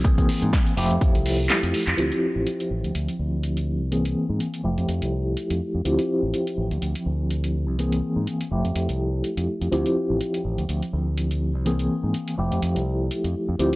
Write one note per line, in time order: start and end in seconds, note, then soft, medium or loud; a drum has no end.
0.00 0.26 C2 medium
0.00 0.73 E3 medium
0.04 0.73 A#3 medium
0.04 0.73 C4 medium
0.04 0.73 G#4 medium
0.04 kick loud
0.04 closed hi-hat medium
0.18 kick medium
0.18 closed hi-hat medium
0.29 open hi-hat loud
0.42 0.51 G#2 medium
0.42 closed hi-hat soft
0.53 kick loud
0.53 snare loud
0.53 closed hi-hat medium
0.67 closed hi-hat medium
0.77 0.88 F1 medium
0.77 1.94 F3 medium
0.77 1.94 A3 medium
0.77 1.94 E4 medium
0.77 1.94 G4 loud
0.77 open hi-hat loud
0.91 1.00 F2 loud
0.91 closed hi-hat soft
1.01 1.13 F2 medium
1.01 kick loud
1.01 closed hi-hat medium
1.15 1.47 C2 medium
1.15 closed hi-hat medium
1.26 open hi-hat loud
1.50 snare loud
1.50 clap loud
1.50 closed hi-hat medium
1.63 1.72 F2 medium
1.63 closed hi-hat medium
1.74 open hi-hat loud
1.87 1.96 F2 medium
1.87 clap medium
1.87 closed hi-hat soft
1.97 2.10 D2 medium
1.97 3.87 F3 medium
1.97 3.87 C4 medium
1.97 3.88 E4 medium
1.97 3.88 G4 medium
1.97 closed hi-hat medium
2.12 closed hi-hat soft
2.36 2.45 A1 medium
2.47 closed hi-hat medium
2.60 closed hi-hat soft
2.71 2.82 A1 medium
2.84 2.93 D2 medium
2.84 closed hi-hat soft
2.95 3.06 D2 medium
2.95 closed hi-hat medium
3.08 closed hi-hat soft
3.19 3.81 D2 medium
3.43 closed hi-hat medium
3.57 closed hi-hat soft
3.81 4.13 C2 medium
3.91 4.60 E3 medium
3.91 4.60 A#3 medium
3.91 4.60 C4 medium
3.91 4.60 G#4 medium
3.91 closed hi-hat medium
4.05 closed hi-hat soft
4.29 4.38 G#2 medium
4.40 closed hi-hat medium
4.54 closed hi-hat soft
4.63 4.76 F1 medium
4.63 5.81 F3 medium
4.63 5.81 A3 medium
4.63 5.81 E4 medium
4.63 5.81 G4 medium
4.78 4.87 F2 medium
4.78 closed hi-hat soft
4.89 5.00 F2 medium
4.89 closed hi-hat medium
5.02 5.34 C2 medium
5.02 closed hi-hat soft
5.37 closed hi-hat medium
5.50 5.59 F2 medium
5.50 closed hi-hat soft
5.75 5.84 F2 medium
5.85 5.97 D2 medium
5.85 7.74 F3 medium
5.85 7.74 C4 medium
5.85 7.75 E4 medium
5.85 7.75 G4 medium
5.85 closed hi-hat medium
5.99 closed hi-hat soft
6.23 6.32 A1 medium
6.34 closed hi-hat medium
6.47 closed hi-hat soft
6.58 6.69 A1 medium
6.71 6.80 D2 medium
6.71 closed hi-hat soft
6.82 6.93 D2 medium
6.82 closed hi-hat medium
6.95 closed hi-hat soft
7.06 7.68 D2 medium
7.30 closed hi-hat medium
7.44 closed hi-hat soft
7.68 8.00 C2 medium
7.78 8.47 E3 medium
7.78 8.47 A#3 medium
7.78 8.47 C4 medium
7.78 8.48 G#4 medium
7.78 closed hi-hat medium
7.92 closed hi-hat soft
8.16 8.25 G#2 medium
8.27 closed hi-hat medium
8.41 closed hi-hat soft
8.51 8.63 F1 medium
8.51 9.68 F3 medium
8.51 9.68 A3 medium
8.51 9.68 E4 medium
8.51 9.69 G4 medium
8.65 8.74 F2 medium
8.65 closed hi-hat soft
8.75 8.87 F2 medium
8.75 closed hi-hat medium
8.89 9.21 C2 medium
8.89 closed hi-hat soft
9.24 closed hi-hat medium
9.37 9.46 F2 medium
9.37 closed hi-hat soft
9.61 9.71 F2 medium
9.61 closed hi-hat soft
9.72 9.84 D2 medium
9.72 11.61 F3 medium
9.72 11.62 C4 medium
9.72 11.62 E4 medium
9.72 11.62 G4 medium
9.72 closed hi-hat medium
9.86 closed hi-hat soft
10.10 10.19 A1 medium
10.21 closed hi-hat medium
10.34 closed hi-hat soft
10.45 10.56 A1 medium
10.58 10.67 D2 medium
10.58 closed hi-hat soft
10.69 10.80 D2 medium
10.69 closed hi-hat medium
10.83 closed hi-hat soft
10.93 11.55 D2 medium
11.18 closed hi-hat medium
11.31 closed hi-hat soft
11.55 11.87 C2 medium
11.65 12.34 E3 medium
11.65 12.34 A#3 medium
11.65 12.34 C4 medium
11.65 12.35 G#4 medium
11.65 closed hi-hat medium
11.79 closed hi-hat soft
12.03 12.13 G#2 medium
12.14 closed hi-hat medium
12.28 closed hi-hat soft
12.38 12.50 F1 medium
12.38 13.55 F3 medium
12.38 13.55 A3 medium
12.38 13.55 E4 medium
12.38 13.56 G4 medium
12.52 12.61 F2 medium
12.52 closed hi-hat soft
12.62 12.74 F2 medium
12.62 closed hi-hat medium
12.76 13.08 C2 medium
12.76 closed hi-hat soft
13.11 closed hi-hat medium
13.24 13.33 F2 medium
13.24 closed hi-hat soft
13.49 13.58 F2 medium
13.59 13.71 D2 medium
13.59 13.76 F3 medium
13.59 13.76 C4 medium
13.59 13.76 E4 medium
13.59 13.76 G4 medium
13.59 closed hi-hat medium